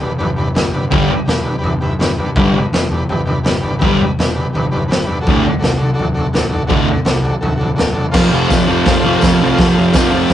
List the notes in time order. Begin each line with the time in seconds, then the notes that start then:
0.00 E1 G4 B4 D5, floor tom
0.18 G1 G4 B4 D5, floor tom
0.36 G4 B4 D5, floor tom
0.54 G1 G4 B4 D5, snare, floor tom
0.71 G1 G4 B4 D5, floor tom
0.90 G1 G2 D3 G3 G4 B4 E5, kick, floor tom
1.06 G4 B4 D5
1.11 floor tom
1.25 E1 G4 B4 D5, snare, floor tom
1.41 G4 B4 D5, floor tom
1.58 G4 B4 D5
1.62 G1, floor tom
1.81 G1 G4 B4 E5, floor tom
1.99 G1 G4 B4 D5, snare, floor tom
2.17 G2 G4 B4 D5, floor tom
2.35 G1 G2 D3 G3 G4 B4 D5, kick, floor tom
2.54 G1 G4 B4 D5, floor tom
2.73 E1 G4 B4 D5, snare, floor tom
2.90 E1 G4 D5, floor tom
2.94 B4
3.09 G1 G4 B4 D5, floor tom
3.25 G4 B4 D5, floor tom
3.43 G1 G4 B4 D5, snare, floor tom
3.61 G1 G4 B4 D5, floor tom
3.79 G1 G2 D3 G4 B4 E5, kick, floor tom
3.83 G3
4.00 G4 B4 D5, floor tom
4.19 E1 G4 B4 D5, snare, floor tom
4.34 G4 B4 D5, floor tom
4.53 G1 G4 B4 D5, floor tom
4.71 G1 G4 B4 D5, floor tom
4.88 G1 G4 B4 D5, floor tom
4.92 snare
5.04 G4 B4 D5
5.08 G2, floor tom
5.21 F#4 A4 D5
5.27 D1 D2 A2 D3, kick, floor tom
5.40 F#4 A4 D5
5.45 D1, floor tom
5.59 F#4 A4 D5
5.63 C2, snare, floor tom
5.77 F#4 A4 D5
5.81 C2, floor tom
5.94 F#4 A4 D5
5.99 D1, floor tom
6.14 F#4 A4 D5, floor tom
6.33 D1 F#4 A4 D5, snare, floor tom
6.49 D1 F#4 A4 D5, floor tom
6.67 D1 D2 A2 D3 F#4 A4 D5, kick, floor tom
6.85 F#4 A4 D5, floor tom
7.04 C2 F#4 A4 D5, snare, floor tom
7.22 F#4 A4 D5, floor tom
7.41 D1 F#4 A4 E5, floor tom
7.55 D1 F#4 A4
7.59 D5, floor tom
7.76 D1 F#4 A4 D5, snare, floor tom
7.93 E1 F#4 A4 D5
7.97 floor tom
8.11 F1 F2 C3 F4 A4 C5, kick, snare, crash
8.16 F3
8.27 F4 A4 D5
8.31 F1 F2 C3 F3
8.46 F4 A4 C5
8.50 F1 F2 C3 F3, kick, snare, open hi-hat, tambourine
8.65 F1 F2 C3 F4 A4 C5
8.70 F3
8.80 F4 A4 C5
8.85 F1 F2 C3 F3, kick, snare, open hi-hat
8.99 F1 F4 A4 C5
9.05 F2 C3 F3
9.15 F4 A4 C5
9.21 F1 F2 C3 F3, kick, snare, open hi-hat, tambourine
9.33 F4 A4 C5
9.40 C2 F2 C3 F3
9.51 F4 A4 C5
9.58 F1 F2 C3 F3, kick, snare, open hi-hat
9.72 F4 A4 C5
9.77 F1 F2 C3 F3
9.91 F1 F2 F4 A4 C5, kick, snare, open hi-hat, tambourine
9.95 C3 F3
10.07 F4 A4 C5
10.11 F1 F2 C3 F3
10.28 F4 A4 D5, kick, open hi-hat